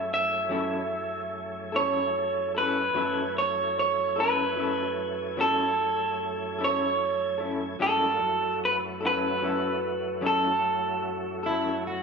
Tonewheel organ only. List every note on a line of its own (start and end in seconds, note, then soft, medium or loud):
0.00 2.91 F#2 soft
0.00 2.91 A3 medium
0.00 2.91 C#4 medium
0.00 2.91 E4 medium
0.00 2.91 G#4 soft
2.93 7.76 F#2 medium
2.93 7.76 A3 medium
2.93 7.77 C#4 medium
2.93 7.76 E4 medium
2.93 7.76 G#5 medium
7.80 8.21 G2 soft
7.80 8.18 A3 soft
7.80 8.22 A#3 medium
7.80 8.21 D4 medium
7.80 8.21 F4 medium
8.19 12.03 F#2 medium
8.19 12.03 F#3 medium
8.19 12.03 A3 medium
8.19 12.03 C#4 medium
8.19 12.03 E4 medium